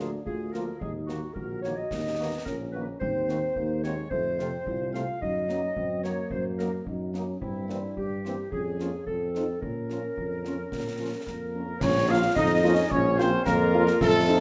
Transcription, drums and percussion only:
0.26 concert bass drum medium
0.54 snare soft
0.81 concert bass drum medium
1.09 snare soft
1.36 concert bass drum soft
1.64 snare soft
1.91 concert bass drum medium
1.91 snare soft
2.46 concert bass drum soft
2.46 snare soft
3.01 concert bass drum medium
3.29 snare soft
3.56 concert bass drum soft
3.84 snare soft
4.11 concert bass drum medium
4.39 snare soft
4.67 concert bass drum medium
4.94 snare soft
5.22 concert bass drum medium
5.49 snare soft
5.76 concert bass drum medium
6.04 snare soft
6.31 concert bass drum medium
6.59 snare soft
6.86 concert bass drum soft
7.14 snare soft
7.42 concert bass drum medium
7.69 snare soft
7.97 concert bass drum soft
8.25 snare soft
8.52 concert bass drum medium
8.79 snare soft
9.07 concert bass drum soft
9.35 snare soft
9.62 concert bass drum medium
9.90 snare soft
10.17 concert bass drum soft
10.45 snare soft
10.72 concert bass drum medium
10.72 snare soft
11.27 concert bass drum soft
11.27 snare soft
11.81 concert bass drum medium
11.81 snare medium
11.81 crash medium
12.36 concert bass drum medium
12.36 snare medium
12.91 concert bass drum medium
13.19 snare medium
13.46 concert bass drum medium
13.46 snare medium
13.87 snare medium
14.01 concert bass drum loud
14.01 snare medium
14.01 crash soft

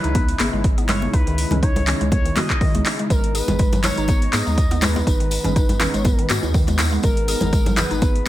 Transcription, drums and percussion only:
0.04 closed hi-hat soft
0.15 kick loud
0.15 closed hi-hat medium
0.15 high conga medium
0.28 closed hi-hat soft
0.40 clap medium
0.40 open hi-hat medium
0.40 high conga medium
0.64 kick loud
0.64 closed hi-hat medium
0.78 closed hi-hat soft
0.89 clap medium
0.89 open hi-hat medium
0.89 low conga loud
1.02 high conga medium
1.13 kick loud
1.13 closed hi-hat medium
1.27 closed hi-hat soft
1.38 open hi-hat medium
1.51 closed hi-hat soft
1.51 mid tom medium
1.51 high conga medium
1.51 low conga loud
1.63 kick loud
1.63 closed hi-hat medium
1.76 closed hi-hat soft
1.76 low conga loud
1.87 clap medium
1.87 open hi-hat medium
1.87 mid tom loud
1.87 high conga medium
2.01 closed hi-hat soft
2.12 kick loud
2.12 closed hi-hat medium
2.12 high conga loud
2.12 low conga loud
2.26 closed hi-hat soft
2.36 clap medium
2.36 open hi-hat medium
2.36 mid tom medium
2.36 high conga medium
2.36 low conga medium
2.50 kick medium
2.50 clap medium
2.50 closed hi-hat soft
2.61 kick loud
2.61 open hi-hat medium
2.75 closed hi-hat soft
2.75 high conga medium
2.86 clap medium
2.86 open hi-hat medium
2.99 closed hi-hat soft
3.10 kick loud
3.10 closed hi-hat medium
3.10 tambourine medium
3.24 closed hi-hat soft
3.35 open hi-hat medium
3.35 tambourine loud
3.48 closed hi-hat soft
3.48 mid tom medium
3.48 tambourine soft
3.48 djembe tone medium
3.48 low conga loud
3.59 kick loud
3.59 closed hi-hat medium
3.59 tambourine soft
3.73 closed hi-hat soft
3.73 tambourine soft
3.73 low conga loud
3.83 clap medium
3.83 open hi-hat medium
3.83 mid tom medium
3.83 tambourine medium
3.83 djembe slap loud
3.97 closed hi-hat soft
3.97 tambourine soft
4.08 kick loud
4.08 closed hi-hat medium
4.08 tambourine medium
4.08 high conga medium
4.22 closed hi-hat soft
4.33 clap medium
4.33 open hi-hat loud
4.33 tambourine medium
4.33 high conga medium
4.47 tambourine soft
4.58 kick loud
4.58 closed hi-hat medium
4.58 tambourine soft
4.71 closed hi-hat soft
4.71 tambourine soft
4.71 djembe slap medium
4.82 clap medium
4.82 open hi-hat medium
4.82 tambourine medium
4.82 djembe tone medium
4.82 low conga loud
4.95 tambourine soft
4.95 djembe slap medium
4.95 high conga medium
4.95 djembe tone medium
5.07 kick loud
5.07 closed hi-hat medium
5.07 tambourine medium
5.20 closed hi-hat soft
5.31 open hi-hat loud
5.31 tambourine medium
5.44 closed hi-hat soft
5.44 mid tom medium
5.44 tambourine soft
5.44 low conga loud
5.56 kick loud
5.56 closed hi-hat medium
5.56 tambourine medium
5.69 closed hi-hat soft
5.69 tambourine soft
5.69 low conga loud
5.80 clap medium
5.80 open hi-hat medium
5.80 mid tom medium
5.80 tambourine medium
5.80 djembe slap loud
5.94 closed hi-hat soft
5.94 tambourine soft
6.05 kick loud
6.05 closed hi-hat medium
6.05 tambourine medium
6.05 djembe tone loud
6.05 high conga loud
6.05 low conga loud
6.19 closed hi-hat soft
6.30 clap medium
6.30 open hi-hat medium
6.30 tambourine medium
6.30 high conga medium
6.43 tambourine soft
6.43 djembe tone loud
6.54 kick loud
6.54 open hi-hat medium
6.54 tambourine medium
6.67 closed hi-hat soft
6.67 tambourine soft
6.67 djembe slap medium
6.67 high conga medium
6.67 djembe tone medium
6.78 clap medium
6.78 open hi-hat loud
6.78 tambourine loud
6.78 djembe slap loud
6.78 djembe tone medium
6.93 tambourine soft
7.03 kick loud
7.03 closed hi-hat medium
7.03 tambourine medium
7.17 closed hi-hat soft
7.28 open hi-hat medium
7.28 tambourine medium
7.41 closed hi-hat soft
7.41 mid tom medium
7.41 tambourine soft
7.41 djembe tone medium
7.41 low conga loud
7.53 kick loud
7.53 closed hi-hat medium
7.53 tambourine medium
7.66 closed hi-hat soft
7.66 tambourine soft
7.66 low conga loud
7.77 clap loud
7.77 open hi-hat medium
7.77 mid tom medium
7.77 tambourine loud
7.77 djembe slap loud
7.91 closed hi-hat soft
7.91 tambourine soft
8.02 kick loud
8.02 closed hi-hat medium
8.02 tambourine medium
8.02 high conga loud
8.16 closed hi-hat soft

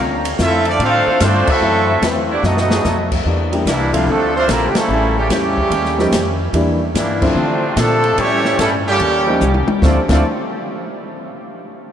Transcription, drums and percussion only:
0.25 ride medium
0.39 snare medium
0.39 hi-hat pedal medium
0.65 ride medium
0.80 ride medium
1.20 snare medium
1.20 hi-hat pedal medium
1.20 ride medium
1.47 kick loud
1.47 crash medium
2.02 snare medium
2.02 hi-hat pedal medium
2.02 ride medium
2.43 snare medium
2.57 snare medium
2.71 snare loud
2.85 snare medium
2.85 hi-hat pedal medium
3.12 kick medium
3.12 crash medium
3.53 ride medium
3.67 snare medium
3.67 hi-hat pedal medium
3.67 ride medium
3.94 kick medium
3.94 ride medium
4.49 snare medium
4.49 hi-hat pedal medium
4.49 ride medium
4.75 snare loud
4.75 ride medium
5.30 snare medium
5.30 hi-hat pedal medium
5.30 ride medium
5.58 kick medium
5.71 ride medium
5.85 snare soft
5.99 snare medium
6.12 snare medium
6.12 hi-hat pedal medium
6.12 ride medium
6.54 ride medium
6.95 snare medium
6.95 hi-hat pedal medium
6.95 ride medium
7.22 kick loud
7.22 crash medium
7.77 snare medium
7.77 hi-hat pedal medium
7.77 ride medium
8.04 ride medium
8.18 ride medium
8.45 snare medium
8.59 snare medium
8.59 hi-hat pedal medium
8.59 ride medium
9.00 ride medium
9.41 hi-hat pedal medium
9.41 high tom medium
9.54 high tom medium
9.68 high tom loud
9.82 kick loud
9.82 snare medium
10.09 kick medium
10.09 snare medium
10.09 crash medium

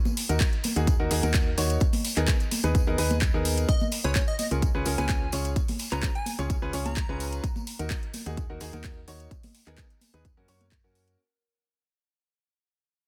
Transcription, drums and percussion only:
0.05 tambourine soft
0.05 high conga loud
0.17 open hi-hat loud
0.17 tambourine medium
0.29 closed hi-hat medium
0.29 tambourine soft
0.40 kick loud
0.40 clap loud
0.40 closed hi-hat medium
0.40 tambourine medium
0.53 closed hi-hat soft
0.64 open hi-hat loud
0.64 tambourine medium
0.64 high conga medium
0.76 closed hi-hat medium
0.76 tambourine soft
0.87 kick loud
0.87 closed hi-hat medium
0.87 tambourine medium
1.11 open hi-hat loud
1.11 tambourine medium
1.23 closed hi-hat medium
1.23 tambourine soft
1.23 high conga medium
1.34 kick loud
1.34 clap loud
1.34 closed hi-hat medium
1.58 open hi-hat loud
1.58 tambourine medium
1.70 closed hi-hat medium
1.70 tambourine soft
1.80 kick loud
1.80 closed hi-hat medium
1.80 tambourine soft
1.93 open hi-hat medium
1.93 tambourine soft
1.93 high conga loud
2.05 open hi-hat loud
2.05 tambourine medium
2.17 clap soft
2.17 closed hi-hat medium
2.17 tambourine soft
2.28 kick loud
2.28 clap loud
2.28 closed hi-hat medium
2.28 tambourine medium
2.40 closed hi-hat soft
2.40 tambourine soft
2.51 open hi-hat loud
2.51 tambourine loud
2.51 high conga medium
2.64 closed hi-hat soft
2.64 tambourine soft
2.75 kick loud
2.75 closed hi-hat medium
2.75 tambourine medium
2.98 open hi-hat loud
2.98 tambourine medium
3.11 closed hi-hat soft
3.11 tambourine soft
3.11 high conga medium
3.21 kick loud
3.21 clap loud
3.21 closed hi-hat medium
3.21 tambourine medium
3.45 open hi-hat loud
3.45 tambourine medium
3.57 closed hi-hat medium
3.57 tambourine soft
3.69 kick loud
3.69 closed hi-hat medium
3.69 tambourine medium
3.80 tambourine soft
3.80 high conga medium
3.92 open hi-hat loud
3.92 tambourine medium
4.04 closed hi-hat medium
4.04 tambourine soft
4.15 kick loud
4.15 clap loud
4.15 closed hi-hat medium
4.15 tambourine medium
4.28 closed hi-hat soft
4.39 open hi-hat loud
4.39 tambourine loud
4.39 high conga medium
4.51 closed hi-hat medium
4.51 tambourine soft
4.62 kick loud
4.62 closed hi-hat medium
4.62 tambourine medium
4.85 open hi-hat loud
4.85 tambourine loud
4.98 closed hi-hat medium
4.98 tambourine soft
4.98 high conga medium
5.09 kick loud
5.09 clap loud
5.09 closed hi-hat medium
5.09 tambourine medium
5.32 open hi-hat loud
5.32 tambourine medium
5.44 closed hi-hat medium
5.44 tambourine soft
5.56 kick loud
5.56 closed hi-hat medium
5.56 tambourine soft
5.68 open hi-hat medium
5.68 tambourine soft
5.68 high conga loud
5.79 open hi-hat loud
5.79 tambourine medium
5.92 clap soft
5.92 closed hi-hat medium
5.92 tambourine soft
6.03 kick loud
6.03 clap loud
6.03 closed hi-hat medium
6.03 tambourine medium
6.15 closed hi-hat soft
6.26 open hi-hat loud
6.26 tambourine medium
6.26 high conga medium
6.39 closed hi-hat medium
6.39 tambourine soft
6.50 kick loud
6.50 closed hi-hat medium
6.50 tambourine medium
6.73 open hi-hat loud
6.73 tambourine medium
6.86 closed hi-hat medium
6.86 tambourine soft
6.86 high conga medium
6.97 kick loud
6.97 clap loud
6.97 closed hi-hat medium
6.97 tambourine soft
7.20 open hi-hat loud
7.20 tambourine medium
7.32 closed hi-hat medium
7.32 tambourine soft
7.43 kick loud
7.43 closed hi-hat medium
7.43 tambourine soft
7.56 tambourine soft
7.56 high conga medium
7.67 open hi-hat loud
7.67 tambourine loud
7.79 closed hi-hat medium
7.79 tambourine soft
7.90 kick loud
7.90 clap loud
7.90 closed hi-hat medium
7.90 tambourine medium
8.03 closed hi-hat soft
8.13 open hi-hat loud
8.13 tambourine medium
8.13 high conga medium
8.26 closed hi-hat medium
8.26 tambourine soft
8.37 kick loud
8.37 closed hi-hat medium
8.37 tambourine soft
8.60 open hi-hat loud
8.60 tambourine medium
8.73 closed hi-hat medium
8.73 tambourine soft
8.73 high conga medium
8.84 kick loud
8.84 clap loud
8.84 closed hi-hat medium
8.84 tambourine medium
9.08 open hi-hat loud
9.08 tambourine medium
9.20 closed hi-hat medium
9.20 tambourine soft
9.31 kick loud
9.31 closed hi-hat medium
9.31 tambourine soft
9.43 open hi-hat medium
9.43 tambourine soft
9.43 high conga loud
9.54 open hi-hat loud
9.54 tambourine medium
9.67 clap soft
9.67 closed hi-hat medium
9.78 kick loud
9.78 clap loud
9.78 closed hi-hat medium
9.78 tambourine medium
9.90 closed hi-hat soft
10.01 open hi-hat loud
10.01 tambourine medium
10.01 high conga medium
10.13 closed hi-hat medium
10.13 tambourine soft
10.25 kick loud
10.25 closed hi-hat medium
10.25 tambourine soft
10.48 open hi-hat loud
10.48 tambourine loud
10.61 closed hi-hat medium
10.61 tambourine soft
10.61 high conga loud
10.70 kick loud
10.70 clap loud
10.70 closed hi-hat medium
10.70 tambourine soft
10.85 tambourine soft
10.95 open hi-hat loud
10.95 tambourine medium
11.06 closed hi-hat medium
11.06 tambourine soft

